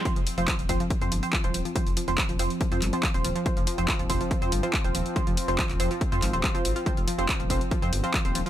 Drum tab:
HH |xxoxxxoxxxoxxxox|xxoxxxoxxxoxxxox|xxoxxxoxxxoxxxox|xxoxxxoxxxoxxxox|
CP |----x-------x---|----x-----x-x---|----x-------x---|----xx----x-x---|
BD |o---o-o-o---o---|o---o---o---o---|o---o-o-o---o---|o---o---o---o---|

HH |xxoxxxoxxxoxxxox|
CP |----x-------x---|
BD |o---o-o-o---o---|